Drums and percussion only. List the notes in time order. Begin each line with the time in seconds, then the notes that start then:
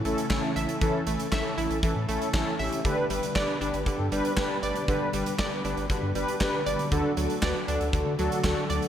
0.05 closed hi-hat
0.18 closed hi-hat
0.30 kick, snare, clap
0.56 closed hi-hat
0.69 closed hi-hat
0.81 kick, closed hi-hat
1.07 closed hi-hat
1.20 closed hi-hat
1.32 kick, snare, clap
1.58 closed hi-hat
1.71 closed hi-hat
1.83 kick, closed hi-hat
2.09 closed hi-hat
2.22 closed hi-hat
2.34 kick, snare, clap
2.60 open hi-hat
2.72 closed hi-hat
2.85 kick, closed hi-hat
3.10 closed hi-hat
3.23 closed hi-hat
3.36 kick, snare, clap
3.61 closed hi-hat
3.74 closed hi-hat
3.86 kick, closed hi-hat
4.12 closed hi-hat
4.25 closed hi-hat
4.37 kick, snare, clap
4.63 closed hi-hat
4.76 closed hi-hat
4.88 kick, closed hi-hat
5.13 closed hi-hat
5.26 closed hi-hat
5.39 kick, snare, clap
5.65 closed hi-hat
5.77 closed hi-hat
5.90 kick, closed hi-hat
6.15 closed hi-hat
6.28 closed hi-hat
6.41 kick, snare, clap
6.66 closed hi-hat
6.79 closed hi-hat
6.92 kick, closed hi-hat
7.17 closed hi-hat
7.30 closed hi-hat
7.42 kick, snare, clap
7.68 closed hi-hat
7.81 closed hi-hat
7.93 kick, closed hi-hat
8.19 closed hi-hat
8.32 closed hi-hat
8.44 kick, snare, clap
8.70 closed hi-hat
8.82 closed hi-hat